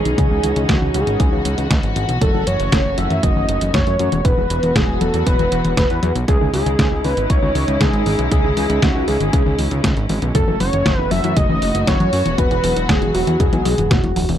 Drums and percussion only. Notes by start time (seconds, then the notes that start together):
0.05 closed hi-hat
0.18 kick, closed hi-hat
0.43 closed hi-hat
0.56 closed hi-hat
0.69 kick, snare, closed hi-hat
0.94 closed hi-hat
1.07 closed hi-hat
1.20 kick, closed hi-hat
1.45 closed hi-hat
1.58 closed hi-hat
1.71 kick, snare, closed hi-hat
1.83 closed hi-hat
1.96 closed hi-hat
2.09 closed hi-hat
2.21 kick, closed hi-hat
2.47 closed hi-hat
2.60 closed hi-hat
2.72 kick, snare, closed hi-hat
2.98 closed hi-hat
3.10 closed hi-hat
3.23 kick, closed hi-hat
3.49 closed hi-hat
3.61 closed hi-hat
3.74 kick, snare, closed hi-hat
3.87 closed hi-hat
3.99 closed hi-hat
4.12 closed hi-hat
4.25 kick, closed hi-hat
4.50 closed hi-hat
4.63 closed hi-hat
4.76 kick, snare, closed hi-hat
5.01 closed hi-hat
5.14 closed hi-hat
5.26 kick, closed hi-hat
5.39 closed hi-hat
5.52 closed hi-hat
5.65 closed hi-hat
5.77 kick, snare, closed hi-hat
5.90 closed hi-hat
6.03 closed hi-hat
6.16 closed hi-hat
6.28 kick, closed hi-hat
6.54 open hi-hat
6.66 closed hi-hat
6.79 kick, snare, closed hi-hat
7.04 open hi-hat
7.17 closed hi-hat
7.30 kick, closed hi-hat
7.55 open hi-hat
7.68 closed hi-hat
7.81 kick, snare, closed hi-hat
7.93 closed hi-hat
8.06 open hi-hat
8.19 closed hi-hat
8.31 kick, closed hi-hat
8.57 open hi-hat
8.70 closed hi-hat
8.82 kick, snare, closed hi-hat
9.08 open hi-hat
9.21 closed hi-hat
9.33 kick, closed hi-hat
9.59 open hi-hat
9.71 closed hi-hat
9.84 kick, snare, closed hi-hat
9.97 closed hi-hat
10.09 open hi-hat
10.22 closed hi-hat
10.35 kick, closed hi-hat
10.60 open hi-hat
10.73 closed hi-hat
10.86 kick, snare, closed hi-hat
11.11 open hi-hat
11.24 closed hi-hat
11.37 kick, closed hi-hat
11.62 open hi-hat
11.75 closed hi-hat
11.87 kick, snare, closed hi-hat
12.00 closed hi-hat
12.13 open hi-hat
12.26 closed hi-hat
12.38 kick, closed hi-hat
12.51 closed hi-hat
12.64 open hi-hat
12.76 closed hi-hat
12.89 kick, snare, closed hi-hat
13.02 closed hi-hat
13.15 open hi-hat
13.27 closed hi-hat
13.40 kick, closed hi-hat, high tom
13.53 closed hi-hat, high tom
13.65 open hi-hat, high tom
13.78 closed hi-hat, mid tom
13.91 kick, snare, closed hi-hat, mid tom
14.04 closed hi-hat
14.16 mid tom, open hi-hat
14.29 mid tom, open hi-hat